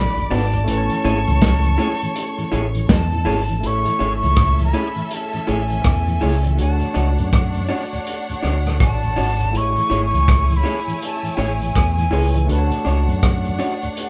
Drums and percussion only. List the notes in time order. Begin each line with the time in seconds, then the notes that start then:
0.18 closed hi-hat
0.31 open hi-hat
0.53 closed hi-hat
0.68 closed hi-hat
0.90 closed hi-hat
1.05 closed hi-hat
1.27 closed hi-hat
1.42 kick, snare, closed hi-hat
1.63 closed hi-hat
1.79 closed hi-hat
2.02 closed hi-hat
2.16 closed hi-hat
2.38 closed hi-hat
2.52 closed hi-hat
2.75 closed hi-hat
2.89 kick, snare, closed hi-hat
3.12 closed hi-hat
3.26 open hi-hat
3.49 closed hi-hat
3.63 closed hi-hat
3.86 closed hi-hat
4.00 closed hi-hat
4.23 closed hi-hat
4.36 kick, cross-stick, closed hi-hat
4.59 closed hi-hat
4.74 closed hi-hat
4.96 closed hi-hat
5.11 closed hi-hat
5.33 closed hi-hat
5.48 closed hi-hat
5.70 closed hi-hat
5.84 kick, cross-stick, closed hi-hat
6.08 closed hi-hat
6.21 open hi-hat
6.45 closed hi-hat
6.58 closed hi-hat
6.80 closed hi-hat
6.95 closed hi-hat
7.18 closed hi-hat
7.33 kick, cross-stick, closed hi-hat
7.55 closed hi-hat
7.70 open hi-hat
7.93 closed hi-hat
8.07 closed hi-hat
8.29 closed hi-hat
8.44 cross-stick, closed hi-hat
8.66 cross-stick, closed hi-hat
8.80 kick, cross-stick, closed hi-hat
9.03 closed hi-hat
9.17 open hi-hat
9.40 closed hi-hat
9.55 closed hi-hat
9.77 closed hi-hat
9.91 closed hi-hat
10.14 closed hi-hat
10.28 kick, cross-stick, closed hi-hat
10.50 closed hi-hat
10.66 closed hi-hat
10.88 closed hi-hat
11.02 closed hi-hat
11.24 closed hi-hat
11.39 closed hi-hat
11.61 closed hi-hat
11.75 kick, cross-stick, closed hi-hat
11.98 closed hi-hat
12.13 open hi-hat
12.35 closed hi-hat
12.49 closed hi-hat
12.72 closed hi-hat
12.86 closed hi-hat
13.09 closed hi-hat
13.23 kick, cross-stick, closed hi-hat
13.45 closed hi-hat
13.60 closed hi-hat
13.82 closed hi-hat
13.97 closed hi-hat